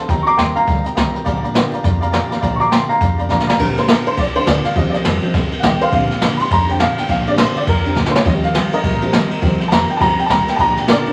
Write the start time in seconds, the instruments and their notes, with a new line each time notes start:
0.01 steel-string acoustic guitar C4
0.08 upright bass D#2, steel-string acoustic guitar D#3 G3 C4 G4 A#4, honky-tonk piano D#5 G5 A#5, kick, closed hi-hat
0.23 steel-string acoustic guitar A#4, honky-tonk piano D#5, upright piano A#5 C#6
0.27 steel-string acoustic guitar C4 G4, honky-tonk piano A#5, upright piano D6, closed hi-hat
0.37 upright bass D#2, steel-string acoustic guitar D#3 G3 C4 G4 A#4, honky-tonk piano D#5 A#5, upright piano G5 C6, snare, closed hi-hat
0.55 steel-string acoustic guitar G4 A#4, honky-tonk piano D#5 G5 A#5, upright piano F5 A#5, muted upright bass stroke, closed hi-hat
0.59 steel-string acoustic guitar C4
0.66 upright bass D2, steel-string acoustic guitar G3 C4 G4 A#4, honky-tonk piano D#5 G5 A#5, kick, closed hi-hat
0.84 steel-string acoustic guitar C4 G4 A#4, honky-tonk piano D#5 G5 A#5, closed hi-hat
0.95 upright bass C2, steel-string acoustic guitar D#3 G3 C4 G4 A#4, honky-tonk piano D#5 G5 A#5, kick, snare, closed hi-hat
1.13 steel-string acoustic guitar C4 G4 A#4, honky-tonk piano D#5 G5 A#5, muted upright bass stroke, closed hi-hat
1.24 upright bass A#1, steel-string acoustic guitar A#2 D3 F3 A#3 D4 G4, honky-tonk piano D5 F5 A#5, kick, closed hi-hat
1.42 steel-string acoustic guitar A#3 D4 G4, honky-tonk piano D5 F5 A#5, closed hi-hat
1.46 steel-string acoustic guitar F3
1.54 steel-string acoustic guitar A#2 D3 F3 A#3 D4 G4, honky-tonk piano D5 F5 G5, snare, closed hi-hat
1.72 steel-string acoustic guitar F3 A#3 D4 G4, honky-tonk piano D5 F5 A#5, muted upright bass stroke, closed hi-hat
1.83 upright bass F2, steel-string acoustic guitar F3 A#3 D4 G4, honky-tonk piano D5 F5 A#5, kick, snare, closed hi-hat
2.00 steel-string acoustic guitar A#3 D4 G4, honky-tonk piano D5 F5 A#5, closed hi-hat
2.05 steel-string acoustic guitar F3
2.12 steel-string acoustic guitar A#2 D3 F3 A#3 D4 G4, honky-tonk piano D5 F5 A#5, snare, closed hi-hat
2.30 steel-string acoustic guitar F3 A#3 D4 G4, honky-tonk piano D5 F5 A#5, muted upright bass stroke, snare, closed hi-hat
2.41 upright bass A#1, steel-string acoustic guitar A#2 D3 F3 A#3 D4 G4, honky-tonk piano D5 F5 A#5, kick, closed hi-hat
2.56 honky-tonk piano D5 F5, upright piano A#5 C#6
2.60 steel-string acoustic guitar F3 A#3 D4 G4, honky-tonk piano A#5, upright piano D6, closed hi-hat
2.70 steel-string acoustic guitar A#2 D3 F3 A#3 D4 G4, honky-tonk piano D5 F5 A#5, upright piano G5 C6, snare, closed hi-hat
2.89 steel-string acoustic guitar F3 A#3 D4 G4, honky-tonk piano D5 F5 A#5, upright piano F5 A#5, muted upright bass stroke, closed hi-hat
3.00 upright bass F2, steel-string acoustic guitar F3 A#3 D4 G4, honky-tonk piano D5 F5 A#5, kick, closed hi-hat
3.18 steel-string acoustic guitar F3 A#3 D4 G4, honky-tonk piano D5 F5 A#5, closed hi-hat
3.29 steel-string acoustic guitar A#2 D3 F3 A#3 D4 G4, honky-tonk piano D5 F5 A#5, kick, snare
3.40 snare
3.47 steel-string acoustic guitar A#3 D4 G4, honky-tonk piano D5 F5 A#5, muted upright bass stroke, snare
3.51 steel-string acoustic guitar F3
3.58 upright bass A#1, steel-string acoustic guitar A#2 D3 F3 A#3 D4 G4, honky-tonk piano D3 G3 C4 A#4, kick, crash
3.75 steel-string acoustic guitar F3 A#3 D4 G4, honky-tonk piano C5, snare, ride
3.88 steel-string acoustic guitar A#2 D3 F3 A#3 D4 G4, honky-tonk piano A#4, snare, ride
4.05 steel-string acoustic guitar F3 A#3 D4 G4, honky-tonk piano C5, muted upright bass stroke, ride
4.17 upright bass C2, steel-string acoustic guitar F3 A#3 D4 G4, honky-tonk piano D5, kick, ride
4.34 honky-tonk piano D3 G3 C4 C5, steel-string acoustic guitar F3 A#3 D4 G4, muted upright bass stroke, ride
4.46 upright bass D2, steel-string acoustic guitar A#2 D3 F3 A#3 D4 G4, honky-tonk piano D5, snare, ride
4.64 steel-string acoustic guitar F3 A#3 D4 G4, honky-tonk piano F5, snare, ride
4.75 upright bass D#2, steel-string acoustic guitar D#3 G3 C4 G4 A#4, honky-tonk piano F3 G3 C4 D#5, kick, ride
4.90 steel-string acoustic guitar G4 A#4, honky-tonk piano D5, snare, ride
4.94 steel-string acoustic guitar C4, honky-tonk piano D#5
5.04 upright bass F1, steel-string acoustic guitar D#3 G3 C4 G4 A#4, snare, ride
5.22 honky-tonk piano F3 G3 C4, steel-string acoustic guitar C4 G4 A#4, ride
5.33 upright bass G1, steel-string acoustic guitar G3 C4 G4 A#4, kick, snare, ride
5.51 steel-string acoustic guitar C4 G4 A#4, muted upright bass stroke, ride
5.60 upright bass A1, steel-string acoustic guitar D#3 G3 C4 G4, honky-tonk piano F#5, kick, snare, ride
5.64 steel-string acoustic guitar A#4, honky-tonk piano D#5 G5
5.79 steel-string acoustic guitar C4 G4 A#4, honky-tonk piano C5 F5, muted upright bass stroke, snare, ride
5.91 upright bass A#1, steel-string acoustic guitar A#2 D3 F3 A#3 D4 G4, honky-tonk piano D3 G3 C4 F5, kick, ride
6.10 steel-string acoustic guitar F3 A#3 D4 G4, snare, ride
6.21 steel-string acoustic guitar A#2 D3 F3 A#3 D4 G4, snare, ride
6.37 steel-string acoustic guitar D4 G4, honky-tonk piano B5, muted upright bass stroke, ride
6.41 steel-string acoustic guitar F3 A#3, honky-tonk piano C6
6.50 upright bass F2, steel-string acoustic guitar F3 A#3 D4 G4, honky-tonk piano A#5, kick, snare, ride
6.68 honky-tonk piano D3 G3 C4 G5, steel-string acoustic guitar F3 A#3 D4 G4, ride
6.79 steel-string acoustic guitar A#2 D3 F3 A#3 D4 G4, honky-tonk piano F5, snare, ride
6.97 steel-string acoustic guitar F3 A#3 D4 G4, honky-tonk piano G5, muted upright bass stroke, snare, ride
7.08 upright bass A#1, steel-string acoustic guitar A#2 D3 F3 A#3 D4 G4, honky-tonk piano F5, kick, ride
7.26 honky-tonk piano D3 G3 C4 D5, steel-string acoustic guitar F3 A#3 D4 G4, ride
7.36 steel-string acoustic guitar A#2 D3 F3 A#3 D4 G4, honky-tonk piano C5, snare, ride
7.55 steel-string acoustic guitar F3 A#3 D4 G4, honky-tonk piano D5, muted upright bass stroke, ride
7.66 upright bass F2, steel-string acoustic guitar F3 A#3 D4 G4, honky-tonk piano A#4, kick, ride
7.84 honky-tonk piano D3 G3 C4, steel-string acoustic guitar F3 A#3 D4 G4, ride
7.95 steel-string acoustic guitar A#2 D3 F3 A#3 D4 G4, kick, snare
8.06 snare
8.11 steel-string acoustic guitar D4 G4, honky-tonk piano C5, muted upright bass stroke
8.15 steel-string acoustic guitar F3 A#3, honky-tonk piano C#5, snare
8.25 upright bass D#2, steel-string acoustic guitar D#3 G3 C4 G4 A#4, honky-tonk piano F3 G3 C4 D#5, kick, ride
8.43 steel-string acoustic guitar C4 G4 A#4, honky-tonk piano F5, snare, ride
8.53 steel-string acoustic guitar D#3 G3 C4 G4 A#4, snare, ride
8.71 steel-string acoustic guitar C4 G4 A#4, honky-tonk piano A#4 D#5, ride
8.83 upright bass A#1, steel-string acoustic guitar G3 C4 G4 A#4, kick, ride
9.01 honky-tonk piano F3 G3 C4, steel-string acoustic guitar C4 G4 A#4, ride
9.12 steel-string acoustic guitar D#3 G3 C4 G4 A#4, snare, ride
9.29 steel-string acoustic guitar C4 G4 A#4, muted upright bass stroke, ride
9.41 upright bass D#2, steel-string acoustic guitar D#3 G3 C4 G4 A#4, honky-tonk piano F3 G3 C4, kick, ride
9.58 steel-string acoustic guitar C4 G4 A#4, muted upright bass stroke, snare, ride
9.68 upright bass F1, steel-string acoustic guitar D#3 G3 C4 G4 A#4, honky-tonk piano A5, snare, ride
9.73 honky-tonk piano A#5
9.87 steel-string acoustic guitar C4 G4 A#4, honky-tonk piano G5, ride
9.97 upright bass G1, honky-tonk piano F3 G3 C4 A5, steel-string acoustic guitar G3 C4, kick
10.01 steel-string acoustic guitar G4 A#4, honky-tonk piano A#5, snare, ride
10.17 steel-string acoustic guitar C4 G4 A#4, honky-tonk piano G5, ride
10.26 upright bass A1, steel-string acoustic guitar D#3 G3 C4, honky-tonk piano A5, kick, snare, ride
10.30 steel-string acoustic guitar G4 A#4, honky-tonk piano A#5
10.46 steel-string acoustic guitar C4 G4 A#4, honky-tonk piano G5, muted upright bass stroke, snare, ride
10.56 upright bass A#1, steel-string acoustic guitar A#2 D3 F3 A#3 D4 G4, honky-tonk piano A5, kick, ride
10.61 honky-tonk piano A#5
10.76 steel-string acoustic guitar F3 A#3 D4 G4, honky-tonk piano G5, snare, ride
10.87 steel-string acoustic guitar A#2 D3 F3 A#3 D4 G4, honky-tonk piano A#4 D5, snare, ride
11.05 honky-tonk piano D3 G3 C4, steel-string acoustic guitar F3 A#3 D4 G4, muted upright bass stroke, ride